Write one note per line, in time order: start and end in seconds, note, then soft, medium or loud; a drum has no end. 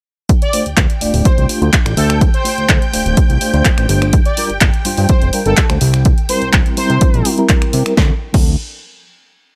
0.29 7.98 G5 medium
0.29 kick loud
0.29 closed hi-hat medium
0.42 0.61 D5 loud
0.42 closed hi-hat soft
0.53 0.64 A3 medium
0.53 0.65 D4 medium
0.53 0.65 F4 medium
0.53 0.65 C5 medium
0.53 open hi-hat loud
0.66 0.75 D2 soft
0.66 closed hi-hat soft
0.77 0.87 D2 loud
0.77 kick loud
0.77 clap loud
0.77 closed hi-hat loud
0.90 closed hi-hat soft
1.01 1.12 D1 soft
1.01 1.46 A3 loud
1.01 1.47 D4 medium
1.01 1.47 F4 medium
1.01 1.47 D5 loud
1.01 open hi-hat loud
1.14 1.23 D1 medium
1.14 open hi-hat medium
1.25 1.35 C2 soft
1.25 1.45 C5 medium
1.25 kick loud
1.25 closed hi-hat loud
1.38 1.47 C2 loud
1.38 closed hi-hat soft
1.49 1.59 A3 medium
1.49 1.59 D4 medium
1.49 1.59 F4 medium
1.49 1.59 C5 medium
1.49 open hi-hat loud
1.62 1.71 D2 medium
1.62 1.68 A3 medium
1.62 1.68 D4 medium
1.62 1.68 F4 medium
1.62 1.69 C5 loud
1.62 closed hi-hat soft
1.73 kick loud
1.73 clap loud
1.73 closed hi-hat loud
1.85 1.95 A1 medium
1.85 1.92 A3 medium
1.85 1.92 D4 medium
1.85 1.92 F4 medium
1.85 1.92 D5 medium
1.85 finger snap medium
1.85 closed hi-hat soft
1.97 2.29 D2 loud
1.97 2.17 A4 loud
1.97 open hi-hat loud
2.10 finger snap medium
2.10 closed hi-hat soft
2.21 kick loud
2.21 closed hi-hat loud
2.34 2.82 C5 medium
2.34 closed hi-hat soft
2.44 2.90 A3 medium
2.44 2.90 D4 medium
2.44 2.90 F4 medium
2.44 2.91 C5 medium
2.44 open hi-hat loud
2.58 2.67 D2 soft
2.58 closed hi-hat soft
2.69 2.79 D2 loud
2.69 kick loud
2.69 clap loud
2.69 closed hi-hat loud
2.82 closed hi-hat soft
2.93 3.03 D1 soft
2.93 3.38 A3 medium
2.93 3.39 D4 medium
2.93 3.39 F4 medium
2.93 3.39 C5 medium
2.93 open hi-hat loud
3.06 3.15 D1 medium
3.06 closed hi-hat soft
3.17 kick loud
3.17 closed hi-hat loud
3.30 3.39 C2 medium
3.30 closed hi-hat soft
3.41 3.52 A3 medium
3.41 3.52 D4 medium
3.41 3.52 F4 medium
3.41 3.52 C5 loud
3.41 open hi-hat loud
3.54 3.63 D2 medium
3.54 3.99 A3 medium
3.54 3.99 D4 medium
3.54 3.99 F4 medium
3.54 3.99 C5 loud
3.54 closed hi-hat soft
3.65 kick loud
3.65 clap loud
3.65 closed hi-hat loud
3.78 3.87 A1 medium
3.78 finger snap medium
3.78 closed hi-hat soft
3.89 4.21 G1 loud
3.89 open hi-hat loud
4.01 4.08 A3 medium
4.01 4.08 D4 medium
4.01 4.08 F4 medium
4.01 4.08 C5 medium
4.01 finger snap medium
4.01 closed hi-hat soft
4.13 kick loud
4.13 closed hi-hat medium
4.25 4.45 D5 medium
4.25 closed hi-hat soft
4.37 4.49 G3 medium
4.37 4.49 D4 medium
4.37 4.49 F4 medium
4.37 4.49 A#4 medium
4.37 open hi-hat loud
4.50 4.59 G1 soft
4.50 closed hi-hat soft
4.61 4.71 G1 loud
4.61 kick loud
4.61 clap loud
4.61 closed hi-hat medium
4.74 closed hi-hat soft
4.85 4.95 G2 soft
4.85 5.30 G3 medium
4.85 5.31 D4 medium
4.85 5.31 F4 medium
4.85 5.31 C5 loud
4.85 open hi-hat loud
4.97 5.07 G2 medium
4.97 open hi-hat medium
5.09 5.20 F1 soft
5.09 5.29 C5 medium
5.09 kick loud
5.09 closed hi-hat medium
5.22 5.31 F1 medium
5.22 closed hi-hat soft
5.33 5.43 G3 medium
5.33 5.43 D4 medium
5.33 5.43 F4 medium
5.33 5.43 A#4 medium
5.33 open hi-hat loud
5.46 5.55 G1 medium
5.46 5.52 G3 medium
5.46 5.52 D4 medium
5.46 5.52 F4 medium
5.46 5.65 A4 loud
5.46 5.53 A#4 medium
5.46 closed hi-hat soft
5.57 kick loud
5.57 clap loud
5.57 closed hi-hat medium
5.69 5.79 D2 medium
5.69 5.76 G3 medium
5.69 5.76 D4 medium
5.69 5.76 F4 medium
5.69 5.76 C5 medium
5.69 finger snap medium
5.69 closed hi-hat soft
5.81 6.14 C2 loud
5.81 open hi-hat loud
5.94 finger snap medium
5.94 closed hi-hat soft
6.05 kick loud
6.05 closed hi-hat medium
6.18 closed hi-hat soft
6.29 6.75 G3 medium
6.29 6.75 C4 medium
6.29 6.75 E4 medium
6.29 6.75 A#4 loud
6.29 6.49 C5 medium
6.29 open hi-hat loud
6.42 6.51 C2 soft
6.42 closed hi-hat soft
6.53 6.63 C2 loud
6.53 kick loud
6.53 clap loud
6.53 closed hi-hat medium
6.66 closed hi-hat soft
6.77 6.88 C3 soft
6.77 7.22 G3 medium
6.77 7.23 C4 medium
6.77 7.23 E4 medium
6.77 7.23 A#4 loud
6.77 7.25 C5 loud
6.77 open hi-hat loud
6.90 6.99 C3 medium
6.90 closed hi-hat soft
7.01 kick loud
7.01 closed hi-hat medium
7.14 7.23 A#1 loud
7.14 closed hi-hat soft
7.25 7.36 G3 medium
7.25 7.36 C4 medium
7.25 7.36 E4 medium
7.25 7.36 A#4 loud
7.25 open hi-hat loud
7.38 7.83 G3 medium
7.38 7.83 C4 medium
7.38 7.83 E4 medium
7.38 7.83 A#4 loud
7.38 closed hi-hat soft
7.49 kick loud
7.49 clap loud
7.49 closed hi-hat medium
7.62 finger snap medium
7.62 closed hi-hat soft
7.73 7.83 C3 medium
7.73 open hi-hat loud
7.86 7.92 G3 medium
7.86 7.92 C4 medium
7.86 7.92 E4 medium
7.86 7.93 A#4 medium
7.86 finger snap medium
7.86 closed hi-hat soft
7.97 8.11 D2 medium
7.97 8.12 D4 medium
7.97 kick loud
7.97 snare medium
8.33 8.56 D2 medium
8.33 8.51 F3 medium
8.33 8.51 C4 medium
8.33 8.52 D4 medium
8.33 8.52 A4 loud
8.33 kick loud
8.33 crash medium